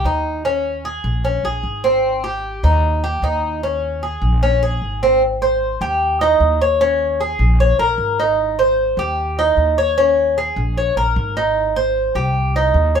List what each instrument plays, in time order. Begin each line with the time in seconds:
0.04 upright bass D#2, cuban tres D#4
0.45 cuban tres C#4
0.85 cuban tres G#4
1.04 upright bass A#1
1.25 cuban tres C#4
1.43 upright bass A#1, cuban tres G#4
1.63 upright bass G#1
1.84 cuban tres C4
2.24 cuban tres G4
2.63 upright bass D#2, cuban tres D#4
3.04 cuban tres G4
3.22 upright bass D#2, cuban tres D#4
3.63 cuban tres C#4
4.03 cuban tres G#4
4.22 upright bass A#1
4.43 cuban tres C#4
4.63 cuban tres G#4
4.82 upright bass G#1
5.03 cuban tres C4
5.42 cuban tres C5
5.81 upright bass D#2, cuban tres G4
6.21 cuban tres D#4
6.40 upright bass D#2
6.61 cuban tres C#5
6.81 cuban tres C#4
7.21 cuban tres G#4
7.39 upright bass A#1
7.60 cuban tres C#5
7.79 upright bass A#1, cuban tres A#4
7.98 upright bass G#1
8.20 cuban tres D#4
8.59 cuban tres C5
8.97 upright bass D#2, cuban tres G4
9.39 cuban tres D#4
9.57 upright bass D#2
9.78 cuban tres C#5
9.98 cuban tres C#4
10.38 cuban tres G#4
10.56 upright bass A#1
10.77 cuban tres C#5
10.97 upright bass A#1, cuban tres A#4
11.16 upright bass G#1
11.37 cuban tres D#4
11.76 cuban tres C5
12.15 upright bass C2, cuban tres G4
12.56 cuban tres D#4
12.74 upright bass D#2
12.95 cuban tres C#5